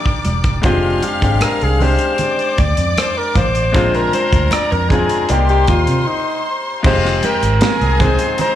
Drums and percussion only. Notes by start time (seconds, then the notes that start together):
0.06 kick
0.25 closed hi-hat, high conga
0.44 kick, closed hi-hat
0.63 kick, closed hi-hat
1.02 closed hi-hat, muted conga
1.22 kick, closed hi-hat
1.41 cross-stick, closed hi-hat, high conga
1.61 closed hi-hat
1.80 open hi-hat, low conga
1.99 closed hi-hat
2.18 closed hi-hat, muted conga, low conga
2.39 closed hi-hat
2.58 kick, closed hi-hat, muted conga
2.77 closed hi-hat
2.98 cross-stick, closed hi-hat, high conga
3.35 kick, closed hi-hat, high conga
3.55 closed hi-hat
3.74 kick, closed hi-hat
3.94 closed hi-hat
4.13 closed hi-hat, muted conga
4.33 kick, closed hi-hat
4.51 cross-stick, closed hi-hat, high conga
4.72 closed hi-hat
4.90 kick, closed hi-hat, low conga
5.09 closed hi-hat
5.29 closed hi-hat
5.49 closed hi-hat
5.67 kick, closed hi-hat, muted conga
5.87 closed hi-hat
6.84 kick, crash
7.05 snare
7.23 closed hi-hat, muted conga
7.43 closed hi-hat
7.61 snare, closed hi-hat, high conga
7.81 closed hi-hat
8.00 kick, closed hi-hat, low conga
8.19 closed hi-hat
8.38 closed hi-hat, low conga